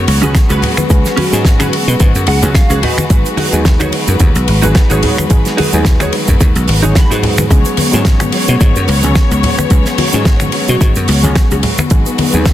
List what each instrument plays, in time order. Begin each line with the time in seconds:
Already playing: reed electric piano F#3 G#3 B3 C#4 G#4, string section B3 F#4 C#5
0.08 slap bass C#2, open hi-hat, ride
0.21 slap bass C#2, reed electric piano F#3 G#3 B3 C#4 G#4, clean electric guitar C#4 F#4 G#4 B4, closed hi-hat, high conga, shaker
0.35 finger snap, kick, snare, closed hi-hat, shaker
0.49 slap bass C#2, clean electric guitar C#4 F#4 G#4 B4, closed hi-hat, shaker
0.62 open hi-hat, ride, low conga
0.77 soft synth lead B4, finger snap, high conga, shaker
0.89 slap bass C#2, reed electric piano F#3 G#3 B3 C#4 G#4, kick, closed hi-hat, shaker
1.05 snare, closed hi-hat, shaker
1.16 clean electric guitar C#4 F#4 G#4 B4, soft synth lead F#4, open hi-hat, ride, high conga
1.31 slap bass G#2, reed electric piano F#3 G#3 B3 C#4 G#4, closed hi-hat, shaker
1.45 kick, snare, closed hi-hat, shaker
1.59 clean electric guitar C#4 F#4 G#4 B4, finger snap, closed hi-hat, high conga, shaker
1.73 open hi-hat, ride
1.87 slap bass B2, soft synth lead B4, muted clean electric guitar stroke, closed hi-hat, shaker
1.99 slap bass G#2, muted clean electric guitar stroke, kick, closed hi-hat, high conga, shaker
2.15 slap bass F#2, closed hi-hat, shaker
2.27 slap bass C#2, soft synth lead G#4, clean electric guitar F#5, open hi-hat, ride
2.42 slap bass C#2, reed electric piano F#3 G#3 B3 C#4 G#4, clean electric guitar C#4 F#4 G#4 B4, soft synth lead G#4, closed hi-hat, high conga, shaker
2.55 clean electric guitar F5, finger snap, kick, snare, closed hi-hat, shaker
2.70 slap bass C#2, clean electric guitar C#4 F#4 G#4 B4, closed hi-hat, shaker
2.82 string section G#3 B4, clean electric guitar D#4 F#4 G#4 B4 D#5, open hi-hat, ride, high bongo, low conga
2.98 finger snap, closed hi-hat, high bongo, high conga, shaker
3.09 slap bass G#1, reed electric piano F#3 G#3 B3 D#4 G#4, kick, closed hi-hat, shaker
3.25 closed hi-hat, shaker
3.37 clean electric guitar D#4 F#4 G#4 B4, open hi-hat, ride, high conga
3.51 slap bass D#2, reed electric piano F#3 G#3 B3 D#4 G#4, closed hi-hat, high bongo, shaker
3.65 kick, snare, closed hi-hat, shaker
3.80 clean electric guitar D#4 F#4 G#4 C#5, finger snap, closed hi-hat, high bongo, high conga, shaker
3.92 open hi-hat, ride
4.08 slap bass F#2, muted clean electric guitar stroke, closed hi-hat, shaker
4.20 slap bass D#2, muted clean electric guitar stroke, kick, closed hi-hat, high conga, shaker
4.35 slap bass B1, closed hi-hat, shaker
4.48 slap bass G#1, open hi-hat, ride
4.62 slap bass G#1, reed electric piano F#3 G#3 B3 D#4 G#4, clean electric guitar D#4 F#4 G#4 B4, closed hi-hat, high conga, shaker
4.75 finger snap, kick, snare, closed hi-hat, shaker
4.90 slap bass G#1, clean electric guitar D#4 F#4 G#4 C#5, closed hi-hat, shaker
5.03 open hi-hat, ride, low conga
5.18 finger snap, closed hi-hat, high conga, shaker
5.30 slap bass G#1, reed electric piano F#3 G#3 B3 D#4 G#4, kick, closed hi-hat, shaker
5.45 snare, closed hi-hat, shaker
5.57 clean electric guitar D#4 F#4 G#4 B4, open hi-hat, ride, high conga
5.72 slap bass D#2, reed electric piano F#3 G#3 B3 D#4 G#4, closed hi-hat, high bongo, shaker
5.85 kick, snare, closed hi-hat, shaker
6.00 clean electric guitar D#4 F#4 G#4 C#5, finger snap, closed hi-hat, high bongo, high conga, shaker
6.13 open hi-hat, ride
6.28 slap bass F#2, muted clean electric guitar stroke, kick, closed hi-hat, shaker
6.40 slap bass D#2, muted clean electric guitar stroke, kick, closed hi-hat, high conga, shaker
6.55 slap bass B1, closed hi-hat, shaker
6.68 slap bass G#1, open hi-hat, ride
6.82 slap bass G#1, reed electric piano F#3 G#3 B3 D#4 G#4, clean electric guitar D#4 F#4 G#4 C#5, closed hi-hat, high conga, shaker
6.95 clean electric guitar B5, finger snap, kick, snare, closed hi-hat, shaker
7.10 slap bass G#2, clean electric guitar D#4 F#4 G#4 B4, closed hi-hat, shaker
7.23 open hi-hat, ride, high bongo, low conga
7.38 finger snap, closed hi-hat, high bongo, high conga, shaker
7.50 slap bass C#2, reed electric piano F#3 G#3 B3 C#4 G#4, synth arpeggio sound F#3, string section B3 F#4 C#5, kick, closed hi-hat, shaker
7.65 synth arpeggio sound B3, closed hi-hat, shaker
7.77 synth arpeggio sound B3, open hi-hat, ride, high conga
7.92 slap bass G#2, reed electric piano F#3 G#3 B3 C#4 G#4, synth arpeggio sound C#4, closed hi-hat, high bongo, shaker
8.05 synth arpeggio sound F#3, kick, snare, closed hi-hat, shaker
8.20 synth arpeggio sound B3, finger snap, closed hi-hat, high bongo, high conga, shaker
8.32 synth arpeggio sound F#3, open hi-hat, ride
8.48 slap bass B2, synth arpeggio sound B3, closed hi-hat, shaker
8.61 slap bass G#2, synth arpeggio sound F#3, kick, closed hi-hat, high conga, shaker
8.76 slap bass F#2, synth arpeggio sound B3, closed hi-hat, shaker
8.88 slap bass C#2, synth arpeggio sound B3, open hi-hat, ride
9.02 slap bass C#2, reed electric piano F#3 G#3 B3 C#4 G#4, synth arpeggio sound C#4, closed hi-hat, high conga, shaker
9.15 synth arpeggio sound F#3, finger snap, kick, snare, closed hi-hat, shaker
9.31 slap bass C#2, synth arpeggio sound B3, closed hi-hat, shaker
9.43 synth arpeggio sound F#3, open hi-hat, ride, low conga
9.58 synth arpeggio sound B3, soft synth lead B4, finger snap, closed hi-hat, high conga, shaker
9.70 slap bass C#2, reed electric piano F#3 G#3 B3 C#4 G#4, synth arpeggio sound F#3, kick, closed hi-hat, shaker
9.85 synth arpeggio sound B3, snare, closed hi-hat, shaker
9.98 synth arpeggio sound B3, soft synth lead F#4, open hi-hat, ride, high conga
10.12 slap bass G#2, reed electric piano F#3 G#3 B3 C#4 G#4, synth arpeggio sound C#4, closed hi-hat, shaker
10.25 kick, snare, closed hi-hat, shaker
10.40 synth arpeggio sound B3, finger snap, closed hi-hat, high conga, shaker
10.52 synth arpeggio sound F#3, open hi-hat, ride
10.68 slap bass B2, synth arpeggio sound B3, soft synth lead F#4, closed hi-hat, shaker
10.81 slap bass G#2, kick, closed hi-hat, high conga, shaker
10.95 slap bass F#2, synth arpeggio sound B3, closed hi-hat, shaker
11.08 slap bass C#2, synth arpeggio sound B3, open hi-hat, ride
11.23 slap bass C#2, reed electric piano F#3 G#3 B3 C#4 G#4, synth arpeggio sound C#4, closed hi-hat, high conga, shaker
11.35 synth arpeggio sound F#3, finger snap, kick, snare, closed hi-hat, shaker
11.51 slap bass C#2, synth arpeggio sound B3, soft synth lead G#4, closed hi-hat, shaker
11.63 synth arpeggio sound F#3, string section G#3 B4, open hi-hat, ride, high bongo, low conga
11.78 synth arpeggio sound B3, finger snap, closed hi-hat, high bongo, high conga, shaker
11.90 slap bass G#1, reed electric piano F#3 G#3 B3 D#4 G#4, synth arpeggio sound F#3, kick, closed hi-hat, shaker
12.06 synth arpeggio sound B3, closed hi-hat, shaker
12.18 synth arpeggio sound B3, open hi-hat, ride, high conga
12.32 slap bass D#2, reed electric piano F#3 G#3 B3 D#4 G#4, synth arpeggio sound D#4, closed hi-hat, high bongo, shaker
12.46 synth arpeggio sound F#3, kick, snare, closed hi-hat, shaker